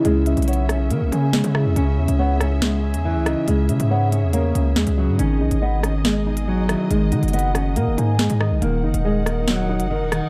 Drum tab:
HH |x---x-xxxx--x---x---x-----x-----|x-----x-----x---x-----x-----x---|x---x-x-----x---x---x-----x-----|x-----x-----x---x-----x-----x---|
SD |------------r-----------o---r---|------------r---o-----------r---|------------------------o-------|------------r---o-----------r---|

HH |x---x-xxxx--x---x---x-----x-----|x-----x-----x---x-----x-----x---|
SD |------------r-----------o---r---|------------r---o-----------r---|